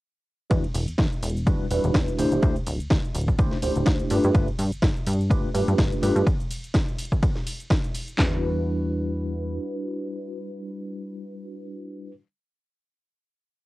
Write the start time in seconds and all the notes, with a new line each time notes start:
0.50 E2 G3 D4 E4 F#4 B4, kick, closed hi-hat, ride, shaker
0.64 closed hi-hat
0.74 E1, open hi-hat, ride, shaker
0.88 E2, closed hi-hat, shaker
0.98 E2, kick, snare, closed hi-hat, ride, shaker
1.12 shaker
1.23 E1, open hi-hat, ride, shaker
1.29 closed hi-hat
1.37 shaker
1.46 E2 G3 D4 E4 F#4 B4, kick, closed hi-hat, ride, shaker
1.70 E1 G3 D4 E4 F#4 B4, open hi-hat, ride, shaker
1.84 E1, closed hi-hat, shaker
1.94 E2, kick, snare, closed hi-hat, ride, shaker
2.08 closed hi-hat, shaker
2.18 D1 A3 D4 E4 G4 C5, open hi-hat, ride, shaker
2.32 D1, closed hi-hat, shaker
2.42 D2 A3 D4 E4 G4 C5, kick, closed hi-hat, ride, shaker
2.56 closed hi-hat, shaker
2.66 D1, open hi-hat, ride, shaker
2.80 D2, closed hi-hat, shaker
2.90 D2, kick, snare, closed hi-hat, ride, shaker
3.04 shaker
3.14 D1, open hi-hat, ride, shaker
3.21 closed hi-hat
3.28 kick, shaker
3.38 D2 A3 D4 E4 G4 C5, kick, closed hi-hat, ride, shaker
3.51 snare
3.62 D1 A3 D4 E4 G4 C5, open hi-hat, ride, shaker
3.76 D1, closed hi-hat, shaker
3.86 D2, kick, snare, closed hi-hat, ride, shaker
4.00 closed hi-hat, shaker
4.10 G2 A3 D4 F4 G4 B4, open hi-hat, ride, shaker
4.24 G2, closed hi-hat, shaker
4.34 G1 A3 D4 F4 G4 B4, kick, closed hi-hat, ride, shaker
4.48 closed hi-hat
4.59 G2, open hi-hat, ride, shaker
4.72 G1, closed hi-hat, shaker
4.82 G1, kick, snare, closed hi-hat, ride, shaker
4.97 shaker
5.07 G2, open hi-hat, ride, shaker
5.13 closed hi-hat
5.21 shaker
5.30 G1 A3 D4 F4 G4 B4, kick, closed hi-hat, ride, shaker
5.54 G2 A3 D4 F4 G4 B4, open hi-hat, ride, shaker
5.68 G2, closed hi-hat, shaker
5.78 G1, kick, snare, closed hi-hat, ride, shaker
5.92 closed hi-hat, shaker
6.02 G2 A3 D4 F4 G4 B4, open hi-hat, ride, shaker
6.16 G2, closed hi-hat, shaker
6.27 kick, closed hi-hat, ride, shaker
6.40 closed hi-hat, shaker
6.51 open hi-hat, ride, shaker
6.64 closed hi-hat, shaker
6.74 kick, snare, closed hi-hat, ride, shaker
6.88 shaker
6.99 open hi-hat, ride, shaker
7.05 closed hi-hat
7.12 kick, shaker
7.23 kick, closed hi-hat, ride, shaker
7.35 snare
7.47 open hi-hat, ride, shaker
7.61 shaker
7.70 kick, snare, closed hi-hat, ride, shaker
7.84 closed hi-hat, shaker
7.94 open hi-hat, ride, shaker
8.08 closed hi-hat, shaker
8.17 E2 G3 D4 E4 F#4 B4, kick, snare, clap